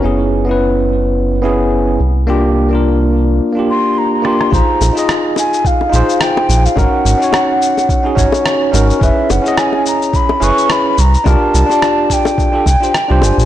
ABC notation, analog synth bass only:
X:1
M:4/4
L:1/16
Q:"Swing 16ths" 1/4=107
K:Cmix
V:1 name="Analog synth bass" clef=bass
_G,,,12- G,,,2 C,,2- | C,,8 z8 | B,,, z B,,, z6 z B,,, z3 B,,, z | _A,,, z A,,, z6 z A,,, z3 A,,, z |
_G,,, z G,,, z6 z G,,, z3 C,, z | C,, z C,, z6 z C,, z2 C,, G,,, B,,, |]